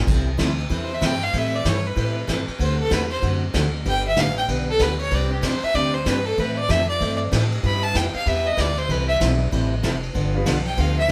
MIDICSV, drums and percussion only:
0, 0, Header, 1, 2, 480
1, 0, Start_track
1, 0, Key_signature, 0, "major"
1, 0, Tempo, 314630
1, 110, Time_signature, 4, 2, 24, 8
1, 16959, End_track
2, 0, Start_track
2, 0, Title_t, "Drums"
2, 110, Note_on_c, 9, 36, 76
2, 115, Note_on_c, 9, 49, 78
2, 263, Note_off_c, 9, 36, 0
2, 267, Note_off_c, 9, 49, 0
2, 589, Note_on_c, 9, 36, 28
2, 591, Note_on_c, 9, 38, 76
2, 591, Note_on_c, 9, 44, 62
2, 591, Note_on_c, 9, 51, 78
2, 742, Note_off_c, 9, 36, 0
2, 743, Note_off_c, 9, 38, 0
2, 743, Note_off_c, 9, 44, 0
2, 743, Note_off_c, 9, 51, 0
2, 886, Note_on_c, 9, 51, 47
2, 1038, Note_off_c, 9, 51, 0
2, 1069, Note_on_c, 9, 36, 20
2, 1071, Note_on_c, 9, 51, 64
2, 1222, Note_off_c, 9, 36, 0
2, 1223, Note_off_c, 9, 51, 0
2, 1550, Note_on_c, 9, 36, 21
2, 1553, Note_on_c, 9, 38, 82
2, 1553, Note_on_c, 9, 44, 68
2, 1553, Note_on_c, 9, 51, 80
2, 1703, Note_off_c, 9, 36, 0
2, 1706, Note_off_c, 9, 38, 0
2, 1706, Note_off_c, 9, 44, 0
2, 1706, Note_off_c, 9, 51, 0
2, 1849, Note_on_c, 9, 51, 49
2, 2002, Note_off_c, 9, 51, 0
2, 2030, Note_on_c, 9, 51, 69
2, 2032, Note_on_c, 9, 36, 25
2, 2183, Note_off_c, 9, 51, 0
2, 2185, Note_off_c, 9, 36, 0
2, 2514, Note_on_c, 9, 36, 22
2, 2518, Note_on_c, 9, 38, 76
2, 2518, Note_on_c, 9, 44, 68
2, 2518, Note_on_c, 9, 51, 68
2, 2666, Note_off_c, 9, 36, 0
2, 2671, Note_off_c, 9, 38, 0
2, 2671, Note_off_c, 9, 44, 0
2, 2671, Note_off_c, 9, 51, 0
2, 2996, Note_on_c, 9, 36, 28
2, 3002, Note_on_c, 9, 51, 61
2, 3148, Note_off_c, 9, 36, 0
2, 3154, Note_off_c, 9, 51, 0
2, 3479, Note_on_c, 9, 36, 25
2, 3484, Note_on_c, 9, 38, 79
2, 3484, Note_on_c, 9, 44, 63
2, 3484, Note_on_c, 9, 51, 76
2, 3631, Note_off_c, 9, 36, 0
2, 3637, Note_off_c, 9, 38, 0
2, 3637, Note_off_c, 9, 44, 0
2, 3637, Note_off_c, 9, 51, 0
2, 3780, Note_on_c, 9, 51, 52
2, 3932, Note_off_c, 9, 51, 0
2, 3960, Note_on_c, 9, 36, 21
2, 3967, Note_on_c, 9, 51, 66
2, 4113, Note_off_c, 9, 36, 0
2, 4119, Note_off_c, 9, 51, 0
2, 4440, Note_on_c, 9, 36, 25
2, 4440, Note_on_c, 9, 38, 81
2, 4440, Note_on_c, 9, 44, 59
2, 4440, Note_on_c, 9, 51, 73
2, 4592, Note_off_c, 9, 38, 0
2, 4592, Note_off_c, 9, 44, 0
2, 4592, Note_off_c, 9, 51, 0
2, 4593, Note_off_c, 9, 36, 0
2, 4738, Note_on_c, 9, 51, 51
2, 4891, Note_off_c, 9, 51, 0
2, 4919, Note_on_c, 9, 36, 25
2, 4919, Note_on_c, 9, 51, 67
2, 5072, Note_off_c, 9, 36, 0
2, 5072, Note_off_c, 9, 51, 0
2, 5400, Note_on_c, 9, 36, 23
2, 5400, Note_on_c, 9, 38, 82
2, 5400, Note_on_c, 9, 44, 58
2, 5400, Note_on_c, 9, 51, 74
2, 5552, Note_off_c, 9, 38, 0
2, 5552, Note_off_c, 9, 44, 0
2, 5552, Note_off_c, 9, 51, 0
2, 5553, Note_off_c, 9, 36, 0
2, 5880, Note_on_c, 9, 36, 22
2, 5880, Note_on_c, 9, 51, 64
2, 6032, Note_off_c, 9, 36, 0
2, 6033, Note_off_c, 9, 51, 0
2, 6352, Note_on_c, 9, 38, 72
2, 6352, Note_on_c, 9, 44, 57
2, 6352, Note_on_c, 9, 51, 80
2, 6358, Note_on_c, 9, 36, 20
2, 6505, Note_off_c, 9, 38, 0
2, 6505, Note_off_c, 9, 44, 0
2, 6505, Note_off_c, 9, 51, 0
2, 6511, Note_off_c, 9, 36, 0
2, 6653, Note_on_c, 9, 51, 51
2, 6806, Note_off_c, 9, 51, 0
2, 6839, Note_on_c, 9, 36, 18
2, 6845, Note_on_c, 9, 51, 70
2, 6992, Note_off_c, 9, 36, 0
2, 6997, Note_off_c, 9, 51, 0
2, 7312, Note_on_c, 9, 38, 76
2, 7312, Note_on_c, 9, 44, 57
2, 7312, Note_on_c, 9, 51, 74
2, 7318, Note_on_c, 9, 36, 25
2, 7464, Note_off_c, 9, 38, 0
2, 7464, Note_off_c, 9, 44, 0
2, 7464, Note_off_c, 9, 51, 0
2, 7471, Note_off_c, 9, 36, 0
2, 7620, Note_on_c, 9, 51, 49
2, 7772, Note_off_c, 9, 51, 0
2, 7795, Note_on_c, 9, 51, 63
2, 7799, Note_on_c, 9, 36, 22
2, 7948, Note_off_c, 9, 51, 0
2, 7951, Note_off_c, 9, 36, 0
2, 8277, Note_on_c, 9, 38, 68
2, 8277, Note_on_c, 9, 44, 69
2, 8277, Note_on_c, 9, 51, 79
2, 8279, Note_on_c, 9, 36, 24
2, 8429, Note_off_c, 9, 38, 0
2, 8429, Note_off_c, 9, 44, 0
2, 8429, Note_off_c, 9, 51, 0
2, 8432, Note_off_c, 9, 36, 0
2, 8582, Note_on_c, 9, 51, 53
2, 8734, Note_off_c, 9, 51, 0
2, 8762, Note_on_c, 9, 36, 19
2, 8765, Note_on_c, 9, 51, 64
2, 8915, Note_off_c, 9, 36, 0
2, 8917, Note_off_c, 9, 51, 0
2, 9245, Note_on_c, 9, 36, 21
2, 9247, Note_on_c, 9, 38, 73
2, 9247, Note_on_c, 9, 44, 69
2, 9247, Note_on_c, 9, 51, 70
2, 9398, Note_off_c, 9, 36, 0
2, 9399, Note_off_c, 9, 38, 0
2, 9399, Note_off_c, 9, 44, 0
2, 9399, Note_off_c, 9, 51, 0
2, 9546, Note_on_c, 9, 51, 50
2, 9699, Note_off_c, 9, 51, 0
2, 9726, Note_on_c, 9, 36, 19
2, 9727, Note_on_c, 9, 51, 64
2, 9879, Note_off_c, 9, 36, 0
2, 9879, Note_off_c, 9, 51, 0
2, 10207, Note_on_c, 9, 36, 24
2, 10211, Note_on_c, 9, 38, 74
2, 10211, Note_on_c, 9, 44, 52
2, 10211, Note_on_c, 9, 51, 77
2, 10359, Note_off_c, 9, 36, 0
2, 10363, Note_off_c, 9, 38, 0
2, 10363, Note_off_c, 9, 44, 0
2, 10363, Note_off_c, 9, 51, 0
2, 10689, Note_on_c, 9, 36, 20
2, 10694, Note_on_c, 9, 51, 67
2, 10841, Note_off_c, 9, 36, 0
2, 10847, Note_off_c, 9, 51, 0
2, 11168, Note_on_c, 9, 36, 23
2, 11174, Note_on_c, 9, 38, 83
2, 11174, Note_on_c, 9, 44, 60
2, 11174, Note_on_c, 9, 51, 86
2, 11321, Note_off_c, 9, 36, 0
2, 11327, Note_off_c, 9, 38, 0
2, 11327, Note_off_c, 9, 44, 0
2, 11327, Note_off_c, 9, 51, 0
2, 11473, Note_on_c, 9, 51, 54
2, 11626, Note_off_c, 9, 51, 0
2, 11646, Note_on_c, 9, 36, 28
2, 11647, Note_on_c, 9, 51, 59
2, 11799, Note_off_c, 9, 36, 0
2, 11800, Note_off_c, 9, 51, 0
2, 12123, Note_on_c, 9, 36, 22
2, 12128, Note_on_c, 9, 38, 69
2, 12128, Note_on_c, 9, 44, 70
2, 12128, Note_on_c, 9, 51, 74
2, 12275, Note_off_c, 9, 36, 0
2, 12280, Note_off_c, 9, 38, 0
2, 12280, Note_off_c, 9, 44, 0
2, 12280, Note_off_c, 9, 51, 0
2, 12419, Note_on_c, 9, 51, 54
2, 12571, Note_off_c, 9, 51, 0
2, 12601, Note_on_c, 9, 36, 25
2, 12605, Note_on_c, 9, 51, 67
2, 12753, Note_off_c, 9, 36, 0
2, 12758, Note_off_c, 9, 51, 0
2, 13082, Note_on_c, 9, 36, 23
2, 13087, Note_on_c, 9, 38, 81
2, 13087, Note_on_c, 9, 44, 63
2, 13087, Note_on_c, 9, 51, 77
2, 13234, Note_off_c, 9, 36, 0
2, 13240, Note_off_c, 9, 38, 0
2, 13240, Note_off_c, 9, 44, 0
2, 13240, Note_off_c, 9, 51, 0
2, 13385, Note_on_c, 9, 51, 50
2, 13538, Note_off_c, 9, 51, 0
2, 13562, Note_on_c, 9, 36, 24
2, 13565, Note_on_c, 9, 51, 66
2, 13715, Note_off_c, 9, 36, 0
2, 13718, Note_off_c, 9, 51, 0
2, 14042, Note_on_c, 9, 36, 21
2, 14048, Note_on_c, 9, 38, 78
2, 14048, Note_on_c, 9, 44, 71
2, 14048, Note_on_c, 9, 51, 82
2, 14195, Note_off_c, 9, 36, 0
2, 14201, Note_off_c, 9, 38, 0
2, 14201, Note_off_c, 9, 44, 0
2, 14201, Note_off_c, 9, 51, 0
2, 14523, Note_on_c, 9, 36, 28
2, 14526, Note_on_c, 9, 51, 70
2, 14675, Note_off_c, 9, 36, 0
2, 14678, Note_off_c, 9, 51, 0
2, 15001, Note_on_c, 9, 36, 26
2, 15003, Note_on_c, 9, 38, 82
2, 15003, Note_on_c, 9, 44, 59
2, 15003, Note_on_c, 9, 51, 73
2, 15153, Note_off_c, 9, 36, 0
2, 15155, Note_off_c, 9, 38, 0
2, 15155, Note_off_c, 9, 44, 0
2, 15155, Note_off_c, 9, 51, 0
2, 15299, Note_on_c, 9, 51, 48
2, 15451, Note_off_c, 9, 51, 0
2, 15479, Note_on_c, 9, 36, 26
2, 15482, Note_on_c, 9, 51, 62
2, 15632, Note_off_c, 9, 36, 0
2, 15634, Note_off_c, 9, 51, 0
2, 15956, Note_on_c, 9, 38, 74
2, 15956, Note_on_c, 9, 44, 56
2, 15956, Note_on_c, 9, 51, 81
2, 15958, Note_on_c, 9, 36, 21
2, 16109, Note_off_c, 9, 38, 0
2, 16109, Note_off_c, 9, 44, 0
2, 16109, Note_off_c, 9, 51, 0
2, 16111, Note_off_c, 9, 36, 0
2, 16255, Note_on_c, 9, 51, 52
2, 16407, Note_off_c, 9, 51, 0
2, 16438, Note_on_c, 9, 36, 26
2, 16439, Note_on_c, 9, 51, 68
2, 16591, Note_off_c, 9, 36, 0
2, 16591, Note_off_c, 9, 51, 0
2, 16959, End_track
0, 0, End_of_file